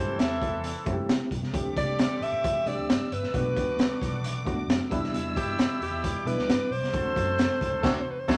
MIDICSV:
0, 0, Header, 1, 7, 480
1, 0, Start_track
1, 0, Tempo, 449775
1, 1645, Time_signature, 4, 2, 24, 8
1, 8932, End_track
2, 0, Start_track
2, 0, Title_t, "String section"
2, 0, Program_c, 0, 48
2, 1637, Note_on_c, 0, 74, 76
2, 1638, Note_on_c, 0, 86, 85
2, 2815, Note_off_c, 0, 74, 0
2, 2816, Note_off_c, 0, 86, 0
2, 2847, Note_on_c, 0, 88, 82
2, 2848, Note_on_c, 0, 76, 70
2, 3550, Note_off_c, 0, 88, 0
2, 3551, Note_off_c, 0, 76, 0
2, 3559, Note_on_c, 0, 86, 91
2, 3560, Note_on_c, 0, 74, 80
2, 5207, Note_off_c, 0, 74, 0
2, 5207, Note_off_c, 0, 86, 0
2, 5248, Note_on_c, 0, 76, 83
2, 5248, Note_on_c, 0, 88, 93
2, 6421, Note_off_c, 0, 88, 0
2, 6422, Note_off_c, 0, 76, 0
2, 6449, Note_on_c, 0, 74, 81
2, 6452, Note_on_c, 0, 86, 94
2, 7388, Note_off_c, 0, 74, 0
2, 7389, Note_off_c, 0, 86, 0
2, 7401, Note_on_c, 0, 84, 82
2, 7402, Note_on_c, 0, 72, 80
2, 8339, Note_off_c, 0, 84, 0
2, 8344, Note_off_c, 0, 72, 0
2, 8352, Note_on_c, 0, 84, 95
2, 8356, Note_on_c, 0, 72, 98
2, 8521, Note_off_c, 0, 84, 0
2, 8523, Note_off_c, 0, 72, 0
2, 8843, Note_on_c, 0, 72, 107
2, 8844, Note_on_c, 0, 84, 95
2, 8932, Note_off_c, 0, 72, 0
2, 8932, Note_off_c, 0, 84, 0
2, 8932, End_track
3, 0, Start_track
3, 0, Title_t, "Alto saxophone"
3, 0, Program_c, 1, 65
3, 0, Note_on_c, 1, 72, 89
3, 207, Note_on_c, 1, 76, 83
3, 223, Note_off_c, 1, 72, 0
3, 686, Note_off_c, 1, 76, 0
3, 1893, Note_on_c, 1, 74, 105
3, 2383, Note_on_c, 1, 76, 105
3, 2399, Note_off_c, 1, 74, 0
3, 2855, Note_on_c, 1, 74, 94
3, 2871, Note_off_c, 1, 76, 0
3, 3342, Note_on_c, 1, 71, 91
3, 3358, Note_off_c, 1, 74, 0
3, 4771, Note_off_c, 1, 71, 0
3, 5728, Note_on_c, 1, 67, 92
3, 6172, Note_off_c, 1, 67, 0
3, 6217, Note_on_c, 1, 67, 94
3, 6693, Note_on_c, 1, 71, 99
3, 6709, Note_off_c, 1, 67, 0
3, 7172, Note_on_c, 1, 72, 108
3, 7188, Note_off_c, 1, 71, 0
3, 8454, Note_on_c, 1, 74, 86
3, 8470, Note_off_c, 1, 72, 0
3, 8554, Note_on_c, 1, 72, 78
3, 8570, Note_off_c, 1, 74, 0
3, 8646, Note_on_c, 1, 71, 81
3, 8662, Note_off_c, 1, 72, 0
3, 8744, Note_on_c, 1, 72, 82
3, 8760, Note_off_c, 1, 71, 0
3, 8844, Note_off_c, 1, 72, 0
3, 8932, End_track
4, 0, Start_track
4, 0, Title_t, "Reed electric piano"
4, 0, Program_c, 2, 4
4, 0, Note_on_c, 2, 57, 68
4, 0, Note_on_c, 2, 60, 63
4, 0, Note_on_c, 2, 64, 61
4, 0, Note_on_c, 2, 67, 72
4, 298, Note_off_c, 2, 60, 0
4, 300, Note_off_c, 2, 57, 0
4, 302, Note_off_c, 2, 64, 0
4, 334, Note_off_c, 2, 67, 0
4, 915, Note_on_c, 2, 57, 81
4, 923, Note_on_c, 2, 60, 81
4, 924, Note_on_c, 2, 64, 79
4, 935, Note_on_c, 2, 66, 72
4, 988, Note_off_c, 2, 66, 0
4, 993, Note_on_c, 2, 67, 89
4, 1356, Note_off_c, 2, 57, 0
4, 1361, Note_off_c, 2, 60, 0
4, 1361, Note_off_c, 2, 64, 0
4, 1395, Note_off_c, 2, 67, 0
4, 1636, Note_on_c, 2, 57, 83
4, 1644, Note_on_c, 2, 60, 72
4, 1650, Note_on_c, 2, 62, 75
4, 1655, Note_on_c, 2, 67, 87
4, 2222, Note_off_c, 2, 57, 0
4, 2226, Note_off_c, 2, 60, 0
4, 2229, Note_off_c, 2, 62, 0
4, 2231, Note_off_c, 2, 67, 0
4, 2838, Note_on_c, 2, 57, 69
4, 2848, Note_on_c, 2, 60, 62
4, 2850, Note_on_c, 2, 62, 66
4, 2857, Note_on_c, 2, 66, 62
4, 2908, Note_off_c, 2, 66, 0
4, 2916, Note_on_c, 2, 67, 78
4, 3277, Note_off_c, 2, 57, 0
4, 3282, Note_off_c, 2, 60, 0
4, 3283, Note_off_c, 2, 62, 0
4, 3316, Note_off_c, 2, 67, 0
4, 3559, Note_on_c, 2, 57, 67
4, 3563, Note_on_c, 2, 59, 62
4, 3565, Note_on_c, 2, 62, 66
4, 3573, Note_on_c, 2, 66, 73
4, 4143, Note_off_c, 2, 57, 0
4, 4145, Note_off_c, 2, 59, 0
4, 4146, Note_off_c, 2, 62, 0
4, 4150, Note_off_c, 2, 66, 0
4, 4753, Note_on_c, 2, 57, 88
4, 4758, Note_on_c, 2, 59, 78
4, 4763, Note_on_c, 2, 60, 65
4, 4771, Note_on_c, 2, 66, 95
4, 4820, Note_off_c, 2, 60, 0
4, 4821, Note_on_c, 2, 62, 79
4, 5194, Note_off_c, 2, 57, 0
4, 5197, Note_off_c, 2, 59, 0
4, 5204, Note_off_c, 2, 66, 0
4, 5229, Note_off_c, 2, 62, 0
4, 5234, Note_on_c, 2, 55, 92
4, 5235, Note_on_c, 2, 59, 84
4, 5246, Note_on_c, 2, 62, 80
4, 5250, Note_on_c, 2, 64, 95
4, 6006, Note_off_c, 2, 55, 0
4, 6007, Note_off_c, 2, 59, 0
4, 6012, Note_off_c, 2, 62, 0
4, 6014, Note_off_c, 2, 64, 0
4, 6679, Note_on_c, 2, 55, 71
4, 6681, Note_on_c, 2, 59, 69
4, 6692, Note_on_c, 2, 62, 67
4, 6692, Note_on_c, 2, 64, 79
4, 7118, Note_off_c, 2, 55, 0
4, 7119, Note_off_c, 2, 59, 0
4, 7125, Note_off_c, 2, 62, 0
4, 7125, Note_off_c, 2, 64, 0
4, 7395, Note_on_c, 2, 57, 73
4, 7404, Note_on_c, 2, 60, 65
4, 7408, Note_on_c, 2, 62, 60
4, 7411, Note_on_c, 2, 66, 77
4, 7982, Note_off_c, 2, 57, 0
4, 7987, Note_off_c, 2, 60, 0
4, 7989, Note_off_c, 2, 62, 0
4, 7990, Note_off_c, 2, 66, 0
4, 8357, Note_on_c, 2, 57, 110
4, 8362, Note_on_c, 2, 60, 108
4, 8368, Note_on_c, 2, 62, 107
4, 8377, Note_on_c, 2, 66, 105
4, 8524, Note_off_c, 2, 57, 0
4, 8527, Note_off_c, 2, 60, 0
4, 8530, Note_off_c, 2, 62, 0
4, 8535, Note_off_c, 2, 66, 0
4, 8837, Note_on_c, 2, 57, 103
4, 8843, Note_on_c, 2, 60, 93
4, 8852, Note_on_c, 2, 62, 97
4, 8853, Note_on_c, 2, 66, 101
4, 8932, Note_off_c, 2, 57, 0
4, 8932, Note_off_c, 2, 60, 0
4, 8932, Note_off_c, 2, 62, 0
4, 8932, Note_off_c, 2, 66, 0
4, 8932, End_track
5, 0, Start_track
5, 0, Title_t, "Horn section"
5, 0, Program_c, 3, 61
5, 0, Note_on_c, 3, 52, 83
5, 0, Note_on_c, 3, 60, 80
5, 0, Note_on_c, 3, 69, 89
5, 1366, Note_off_c, 3, 52, 0
5, 1367, Note_off_c, 3, 60, 0
5, 1367, Note_off_c, 3, 69, 0
5, 1644, Note_on_c, 3, 50, 82
5, 1644, Note_on_c, 3, 60, 81
5, 1646, Note_on_c, 3, 67, 93
5, 3289, Note_off_c, 3, 50, 0
5, 3289, Note_off_c, 3, 60, 0
5, 3290, Note_off_c, 3, 67, 0
5, 3567, Note_on_c, 3, 59, 81
5, 3569, Note_on_c, 3, 50, 80
5, 3569, Note_on_c, 3, 66, 83
5, 4976, Note_off_c, 3, 59, 0
5, 4977, Note_off_c, 3, 50, 0
5, 4977, Note_off_c, 3, 66, 0
5, 5239, Note_on_c, 3, 47, 82
5, 5242, Note_on_c, 3, 55, 73
5, 5243, Note_on_c, 3, 64, 84
5, 7123, Note_off_c, 3, 47, 0
5, 7125, Note_off_c, 3, 55, 0
5, 7125, Note_off_c, 3, 64, 0
5, 7397, Note_on_c, 3, 69, 86
5, 7399, Note_on_c, 3, 54, 83
5, 7401, Note_on_c, 3, 62, 78
5, 8334, Note_off_c, 3, 69, 0
5, 8339, Note_off_c, 3, 62, 0
5, 8340, Note_off_c, 3, 54, 0
5, 8347, Note_on_c, 3, 69, 97
5, 8352, Note_on_c, 3, 62, 106
5, 8353, Note_on_c, 3, 54, 96
5, 8475, Note_off_c, 3, 69, 0
5, 8479, Note_off_c, 3, 54, 0
5, 8479, Note_off_c, 3, 62, 0
5, 8832, Note_on_c, 3, 62, 99
5, 8835, Note_on_c, 3, 54, 104
5, 8839, Note_on_c, 3, 69, 97
5, 8932, Note_off_c, 3, 54, 0
5, 8932, Note_off_c, 3, 62, 0
5, 8932, Note_off_c, 3, 69, 0
5, 8932, End_track
6, 0, Start_track
6, 0, Title_t, "Picked electric bass"
6, 0, Program_c, 4, 34
6, 0, Note_on_c, 4, 43, 85
6, 177, Note_off_c, 4, 43, 0
6, 200, Note_on_c, 4, 40, 80
6, 518, Note_off_c, 4, 40, 0
6, 559, Note_on_c, 4, 40, 86
6, 772, Note_off_c, 4, 40, 0
6, 924, Note_on_c, 4, 42, 88
6, 1030, Note_off_c, 4, 42, 0
6, 1038, Note_on_c, 4, 43, 74
6, 1146, Note_off_c, 4, 43, 0
6, 1158, Note_on_c, 4, 48, 86
6, 1266, Note_off_c, 4, 48, 0
6, 1397, Note_on_c, 4, 35, 85
6, 1506, Note_off_c, 4, 35, 0
6, 1516, Note_on_c, 4, 36, 76
6, 1625, Note_off_c, 4, 36, 0
6, 1639, Note_on_c, 4, 38, 93
6, 1851, Note_off_c, 4, 38, 0
6, 1883, Note_on_c, 4, 36, 90
6, 2199, Note_off_c, 4, 36, 0
6, 2352, Note_on_c, 4, 33, 84
6, 2462, Note_off_c, 4, 33, 0
6, 2480, Note_on_c, 4, 33, 72
6, 2691, Note_off_c, 4, 33, 0
6, 2839, Note_on_c, 4, 36, 82
6, 2946, Note_off_c, 4, 36, 0
6, 2957, Note_on_c, 4, 38, 70
6, 3065, Note_off_c, 4, 38, 0
6, 3080, Note_on_c, 4, 43, 90
6, 3187, Note_off_c, 4, 43, 0
6, 3328, Note_on_c, 4, 31, 90
6, 3431, Note_off_c, 4, 31, 0
6, 3450, Note_on_c, 4, 33, 76
6, 3552, Note_off_c, 4, 33, 0
6, 3566, Note_on_c, 4, 35, 99
6, 3775, Note_off_c, 4, 35, 0
6, 3804, Note_on_c, 4, 38, 84
6, 4118, Note_off_c, 4, 38, 0
6, 4284, Note_on_c, 4, 35, 90
6, 4389, Note_off_c, 4, 35, 0
6, 4403, Note_on_c, 4, 35, 80
6, 4718, Note_off_c, 4, 35, 0
6, 4765, Note_on_c, 4, 38, 95
6, 4974, Note_off_c, 4, 38, 0
6, 4993, Note_on_c, 4, 42, 94
6, 5102, Note_off_c, 4, 42, 0
6, 5242, Note_on_c, 4, 40, 95
6, 5347, Note_off_c, 4, 40, 0
6, 5364, Note_on_c, 4, 38, 76
6, 5468, Note_off_c, 4, 38, 0
6, 5482, Note_on_c, 4, 40, 89
6, 5693, Note_off_c, 4, 40, 0
6, 5719, Note_on_c, 4, 43, 96
6, 6036, Note_off_c, 4, 43, 0
6, 6200, Note_on_c, 4, 40, 84
6, 6306, Note_off_c, 4, 40, 0
6, 6313, Note_on_c, 4, 40, 76
6, 6528, Note_off_c, 4, 40, 0
6, 6673, Note_on_c, 4, 35, 100
6, 6782, Note_off_c, 4, 35, 0
6, 6791, Note_on_c, 4, 38, 77
6, 6902, Note_off_c, 4, 38, 0
6, 6922, Note_on_c, 4, 43, 93
6, 7027, Note_off_c, 4, 43, 0
6, 7160, Note_on_c, 4, 35, 89
6, 7266, Note_off_c, 4, 35, 0
6, 7277, Note_on_c, 4, 36, 84
6, 7385, Note_off_c, 4, 36, 0
6, 7400, Note_on_c, 4, 38, 107
6, 7612, Note_off_c, 4, 38, 0
6, 7646, Note_on_c, 4, 42, 100
6, 7961, Note_off_c, 4, 42, 0
6, 8124, Note_on_c, 4, 38, 86
6, 8229, Note_off_c, 4, 38, 0
6, 8236, Note_on_c, 4, 38, 92
6, 8345, Note_off_c, 4, 38, 0
6, 8362, Note_on_c, 4, 38, 102
6, 8527, Note_off_c, 4, 38, 0
6, 8841, Note_on_c, 4, 38, 103
6, 8932, Note_off_c, 4, 38, 0
6, 8932, End_track
7, 0, Start_track
7, 0, Title_t, "Drums"
7, 204, Note_on_c, 9, 42, 75
7, 213, Note_on_c, 9, 38, 97
7, 311, Note_off_c, 9, 42, 0
7, 320, Note_off_c, 9, 38, 0
7, 444, Note_on_c, 9, 36, 85
7, 454, Note_on_c, 9, 42, 64
7, 551, Note_off_c, 9, 36, 0
7, 561, Note_off_c, 9, 42, 0
7, 680, Note_on_c, 9, 42, 85
7, 787, Note_off_c, 9, 42, 0
7, 917, Note_on_c, 9, 42, 51
7, 922, Note_on_c, 9, 36, 89
7, 1024, Note_off_c, 9, 42, 0
7, 1029, Note_off_c, 9, 36, 0
7, 1166, Note_on_c, 9, 42, 86
7, 1168, Note_on_c, 9, 38, 99
7, 1272, Note_off_c, 9, 42, 0
7, 1274, Note_off_c, 9, 38, 0
7, 1398, Note_on_c, 9, 36, 79
7, 1406, Note_on_c, 9, 42, 73
7, 1505, Note_off_c, 9, 36, 0
7, 1513, Note_off_c, 9, 42, 0
7, 1530, Note_on_c, 9, 38, 30
7, 1637, Note_off_c, 9, 38, 0
7, 1641, Note_on_c, 9, 36, 98
7, 1642, Note_on_c, 9, 42, 80
7, 1747, Note_off_c, 9, 36, 0
7, 1749, Note_off_c, 9, 42, 0
7, 1884, Note_on_c, 9, 36, 93
7, 1886, Note_on_c, 9, 42, 79
7, 1991, Note_off_c, 9, 36, 0
7, 1992, Note_off_c, 9, 42, 0
7, 2119, Note_on_c, 9, 42, 77
7, 2129, Note_on_c, 9, 38, 106
7, 2226, Note_off_c, 9, 42, 0
7, 2235, Note_off_c, 9, 38, 0
7, 2372, Note_on_c, 9, 42, 67
7, 2478, Note_off_c, 9, 42, 0
7, 2605, Note_on_c, 9, 42, 88
7, 2607, Note_on_c, 9, 36, 90
7, 2712, Note_off_c, 9, 42, 0
7, 2714, Note_off_c, 9, 36, 0
7, 2844, Note_on_c, 9, 42, 56
7, 2950, Note_off_c, 9, 42, 0
7, 3090, Note_on_c, 9, 42, 85
7, 3093, Note_on_c, 9, 38, 104
7, 3197, Note_off_c, 9, 42, 0
7, 3199, Note_off_c, 9, 38, 0
7, 3330, Note_on_c, 9, 42, 72
7, 3436, Note_off_c, 9, 42, 0
7, 3451, Note_on_c, 9, 38, 32
7, 3558, Note_off_c, 9, 38, 0
7, 3564, Note_on_c, 9, 36, 97
7, 3568, Note_on_c, 9, 42, 82
7, 3671, Note_off_c, 9, 36, 0
7, 3674, Note_off_c, 9, 42, 0
7, 3805, Note_on_c, 9, 36, 92
7, 3809, Note_on_c, 9, 42, 81
7, 3912, Note_off_c, 9, 36, 0
7, 3915, Note_off_c, 9, 42, 0
7, 4043, Note_on_c, 9, 42, 75
7, 4052, Note_on_c, 9, 38, 100
7, 4150, Note_off_c, 9, 42, 0
7, 4159, Note_off_c, 9, 38, 0
7, 4285, Note_on_c, 9, 36, 89
7, 4288, Note_on_c, 9, 38, 30
7, 4296, Note_on_c, 9, 42, 67
7, 4392, Note_off_c, 9, 36, 0
7, 4394, Note_off_c, 9, 38, 0
7, 4403, Note_off_c, 9, 42, 0
7, 4527, Note_on_c, 9, 42, 87
7, 4634, Note_off_c, 9, 42, 0
7, 4766, Note_on_c, 9, 36, 91
7, 4767, Note_on_c, 9, 42, 53
7, 4872, Note_off_c, 9, 36, 0
7, 4874, Note_off_c, 9, 42, 0
7, 5013, Note_on_c, 9, 42, 92
7, 5015, Note_on_c, 9, 38, 111
7, 5119, Note_off_c, 9, 42, 0
7, 5122, Note_off_c, 9, 38, 0
7, 5243, Note_on_c, 9, 36, 98
7, 5247, Note_on_c, 9, 42, 68
7, 5350, Note_off_c, 9, 36, 0
7, 5354, Note_off_c, 9, 42, 0
7, 5374, Note_on_c, 9, 38, 31
7, 5481, Note_off_c, 9, 38, 0
7, 5487, Note_on_c, 9, 42, 76
7, 5594, Note_off_c, 9, 42, 0
7, 5724, Note_on_c, 9, 36, 90
7, 5729, Note_on_c, 9, 42, 82
7, 5830, Note_off_c, 9, 36, 0
7, 5836, Note_off_c, 9, 42, 0
7, 5960, Note_on_c, 9, 42, 77
7, 5969, Note_on_c, 9, 38, 97
7, 6067, Note_off_c, 9, 42, 0
7, 6076, Note_off_c, 9, 38, 0
7, 6210, Note_on_c, 9, 42, 71
7, 6317, Note_off_c, 9, 42, 0
7, 6445, Note_on_c, 9, 36, 90
7, 6446, Note_on_c, 9, 42, 92
7, 6552, Note_off_c, 9, 36, 0
7, 6553, Note_off_c, 9, 42, 0
7, 6691, Note_on_c, 9, 42, 57
7, 6798, Note_off_c, 9, 42, 0
7, 6812, Note_on_c, 9, 38, 36
7, 6919, Note_off_c, 9, 38, 0
7, 6931, Note_on_c, 9, 42, 90
7, 6933, Note_on_c, 9, 38, 108
7, 7037, Note_off_c, 9, 42, 0
7, 7040, Note_off_c, 9, 38, 0
7, 7176, Note_on_c, 9, 46, 50
7, 7282, Note_off_c, 9, 46, 0
7, 7296, Note_on_c, 9, 38, 33
7, 7402, Note_on_c, 9, 36, 99
7, 7403, Note_off_c, 9, 38, 0
7, 7404, Note_on_c, 9, 42, 79
7, 7509, Note_off_c, 9, 36, 0
7, 7511, Note_off_c, 9, 42, 0
7, 7645, Note_on_c, 9, 36, 92
7, 7652, Note_on_c, 9, 42, 84
7, 7751, Note_off_c, 9, 36, 0
7, 7758, Note_off_c, 9, 42, 0
7, 7881, Note_on_c, 9, 42, 83
7, 7890, Note_on_c, 9, 38, 104
7, 7988, Note_off_c, 9, 42, 0
7, 7997, Note_off_c, 9, 38, 0
7, 8124, Note_on_c, 9, 36, 87
7, 8134, Note_on_c, 9, 42, 71
7, 8230, Note_off_c, 9, 36, 0
7, 8240, Note_off_c, 9, 42, 0
7, 8361, Note_on_c, 9, 36, 113
7, 8365, Note_on_c, 9, 49, 86
7, 8371, Note_on_c, 9, 38, 104
7, 8467, Note_off_c, 9, 36, 0
7, 8471, Note_off_c, 9, 49, 0
7, 8478, Note_off_c, 9, 38, 0
7, 8841, Note_on_c, 9, 36, 106
7, 8845, Note_on_c, 9, 49, 77
7, 8851, Note_on_c, 9, 38, 107
7, 8932, Note_off_c, 9, 36, 0
7, 8932, Note_off_c, 9, 38, 0
7, 8932, Note_off_c, 9, 49, 0
7, 8932, End_track
0, 0, End_of_file